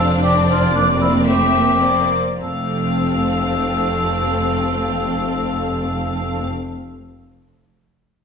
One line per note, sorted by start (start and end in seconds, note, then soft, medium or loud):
0.00 2.14 F1 soft
0.00 2.14 F2 soft
0.00 0.21 C4 soft
0.00 0.74 D4 soft
0.00 0.22 F5 soft
0.22 0.74 C4 soft
0.22 0.35 G4 medium
0.22 1.25 D5 soft
0.49 0.74 F4 medium
0.74 1.26 A#3 soft
0.74 1.82 C4 soft
0.74 0.87 D4 medium
1.01 1.13 E4 soft
1.27 1.55 A3 soft
1.27 2.10 G4 medium
1.27 1.82 E5 soft
1.55 1.83 A#3 soft
1.82 2.18 A#3 soft
1.82 2.18 C4 soft
1.82 2.19 D5 soft
2.41 6.45 F1 soft
2.41 6.45 F2 soft
2.41 6.45 A3 soft
2.41 6.45 C4 soft
2.41 6.45 A4 soft
2.41 6.46 F5 soft